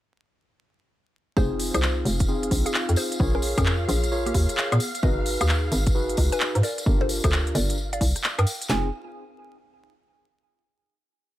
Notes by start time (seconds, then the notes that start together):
1.37 F1 C4 D#4 F4 G#4 C5 F5, kick, tambourine
1.60 open hi-hat, tambourine
1.74 C2 G#4 C5, cross-stick, closed hi-hat, tambourine, high woodblock
1.82 clap, tambourine
2.05 F1, open hi-hat, tambourine
2.19 kick, closed hi-hat, tambourine
2.28 C4 D#4 F4 G#4, tambourine
2.43 closed hi-hat
2.51 A#1, kick, open hi-hat, tambourine
2.66 G#4 F5, closed hi-hat, tambourine
2.74 clap, tambourine
2.89 F2, closed hi-hat
2.96 G#4 C5, open hi-hat, tambourine
3.12 closed hi-hat, tambourine
3.20 A#1 F4 G#4 A#4 C#5, kick
3.35 C#4 A#4
3.42 open hi-hat, tambourine
3.58 F2 C#4 A#4, kick, cross-stick, closed hi-hat, tambourine, high woodblock
3.66 clap, tambourine
3.88 A#1 F4 G#4, open hi-hat, tambourine
4.04 closed hi-hat, tambourine
4.12 F4 G#4 A#4 C#5, tambourine
4.26 A#3 G4, closed hi-hat
4.34 D#2, kick, open hi-hat, tambourine
4.49 closed hi-hat, tambourine
4.57 clap, tambourine
4.72 A#2 B3 G#4, cross-stick, closed hi-hat, high woodblock
4.80 open hi-hat, tambourine
4.95 closed hi-hat, tambourine
5.03 G#1 D#4 F#4 G#4 B4 D#5, kick, tambourine
5.26 open hi-hat, tambourine
5.41 D#2 G#4 F5, cross-stick, closed hi-hat, tambourine, high woodblock
5.49 clap, tambourine
5.72 G#1, open hi-hat, tambourine
5.86 kick, closed hi-hat, tambourine
5.95 D#4 F#4 G#4 B4, tambourine
6.09 closed hi-hat
6.17 C#2, kick, open hi-hat, tambourine
6.32 B4 G#5, closed hi-hat, tambourine
6.40 clap, tambourine
6.55 G#2, closed hi-hat
6.63 A#4 D5, open hi-hat, tambourine
6.78 closed hi-hat, tambourine
6.86 G1 D4 F4 G4 A#4, kick, tambourine
7.01 A4 C5
7.09 open hi-hat, tambourine
7.24 D2 A4 C5, kick, cross-stick, closed hi-hat, tambourine, high woodblock
7.32 clap, tambourine
7.47 closed hi-hat
7.55 G1 A#4 D5, open hi-hat, tambourine
7.70 closed hi-hat, tambourine
7.78 tambourine
7.93 D5 F5, closed hi-hat
8.01 C2, kick, open hi-hat, tambourine
8.15 cross-stick, closed hi-hat, tambourine
8.24 clap, tambourine
8.38 G2 A#4 G5, cross-stick, closed hi-hat, high woodblock
8.47 open hi-hat, tambourine
8.62 closed hi-hat, tambourine
8.69 F1 C4 D#4 F4 G#4 G#5, snare, clap